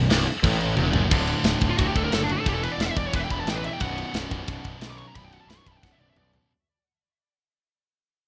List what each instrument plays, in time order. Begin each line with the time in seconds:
0.09 picked electric bass C1, distorted electric guitar C2, snare, crash
0.27 crash
0.43 picked electric bass A1, distorted electric guitar A2, kick, crash
0.60 crash
0.77 picked electric bass E1, distorted electric guitar E2, high tom
0.93 picked electric bass F#1, distorted electric guitar F#2, floor tom
1.10 picked electric bass D1, distorted electric guitar D2 A2 D3, kick, crash
1.27 ride
1.44 picked electric bass D1, snare, ride
1.61 picked electric bass D1, kick, ride
1.70 lead electric guitar F4
1.77 picked electric bass D1, distorted electric guitar D2 A2 D3, lead electric guitar F#4, kick, ride
1.87 lead electric guitar G4
1.95 picked electric bass D1, lead electric guitar A4, kick, ride
2.04 lead electric guitar A#4
2.12 picked electric bass F#1, lead electric guitar A4, snare, ride
2.22 lead electric guitar D4, snare
2.29 lead electric guitar F#4, ride
2.40 distorted electric guitar E2, lead electric guitar A4
2.46 picked electric bass E1, distorted electric guitar B2 E3, lead electric guitar G4, kick, ride
2.54 lead electric guitar A4
2.63 lead electric guitar B4, ride
2.72 lead electric guitar D5
2.78 picked electric bass E1, lead electric guitar E5, snare, ride
2.86 lead electric guitar F#5
2.91 lead electric guitar E5
2.96 picked electric bass E1, lead electric guitar D5, kick, ride
3.07 lead electric guitar C#5
3.12 picked electric bass E1, distorted electric guitar E2 B2 E3, lead electric guitar B4, kick, ride
3.20 lead electric guitar E5
3.24 lead electric guitar G5
3.30 picked electric bass E1, lead electric guitar B5, kick, ride
3.41 lead electric guitar A5
3.46 picked electric bass A1, lead electric guitar G5, snare, ride
3.56 lead electric guitar B4
3.64 lead electric guitar E5, ride
3.73 lead electric guitar G5
3.79 picked electric bass B0, distorted electric guitar B1 F#2, lead electric guitar F#5, kick, ride
3.83 distorted electric guitar B2
3.98 ride
4.14 picked electric bass B0, snare, ride
4.31 picked electric bass B0, kick, ride
4.47 picked electric bass B0, distorted electric guitar B1 F#2 B2, kick, ride
4.64 picked electric bass B0, kick, ride
4.80 picked electric bass B1, snare, ride
4.90 lead electric guitar D6, snare
4.98 lead electric guitar C#6, ride
5.07 lead electric guitar A#5
5.15 picked electric bass B0, distorted electric guitar B1 F#2 B2, lead electric guitar B5, kick, ride
5.25 lead electric guitar G5
5.32 lead electric guitar F#5, ride
5.40 lead electric guitar A5
5.47 picked electric bass B0, lead electric guitar B5, snare, ride
5.57 lead electric guitar C#6
5.66 picked electric bass B0, lead electric guitar B5, kick, ride
5.71 lead electric guitar A5
5.77 lead electric guitar G5
5.82 picked electric bass B0, distorted electric guitar B1 F#2, lead electric guitar F#5, kick, snare
5.87 distorted electric guitar B2
5.92 lead electric guitar E5
5.98 picked electric bass B0, lead electric guitar D5, high tom
6.10 lead electric guitar E5
6.16 picked electric bass B1, lead electric guitar D5, mid tom
6.34 floor tom